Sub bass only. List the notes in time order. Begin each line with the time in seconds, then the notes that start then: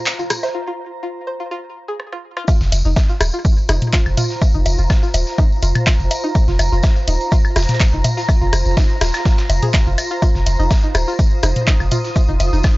0.19 F1
2.61 F1
2.72 F1
2.85 F1
3.21 D#1
3.69 F1
4.06 F1
4.54 F1
4.66 F1
4.79 F1
5.14 D#1
5.63 F1
6.00 F1
6.48 F1
6.59 F1
6.72 F1
7.08 D#1
7.56 F1
7.93 F1
8.42 F1
8.53 F1
8.66 F1
9.01 D#1
9.50 F1
9.87 F1
10.35 F1
10.46 F1
10.59 F1
10.95 D#1
11.43 F1
11.80 F1
12.29 F1
12.40 F1
12.53 F1